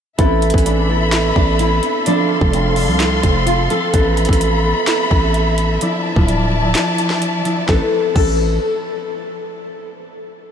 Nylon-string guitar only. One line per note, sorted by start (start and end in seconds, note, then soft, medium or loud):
0.18 0.63 E4 medium
0.66 0.87 D4 medium
0.90 1.34 E4 medium
1.36 1.58 D4 medium
1.59 2.03 E4 medium
2.07 2.51 D4 loud
2.54 2.75 C4 medium
2.76 3.20 D4 medium
3.23 3.45 C4 medium
3.46 3.68 F4 medium
3.71 3.92 A4 medium
7.69 7.82 A4 medium
8.16 8.37 A4 medium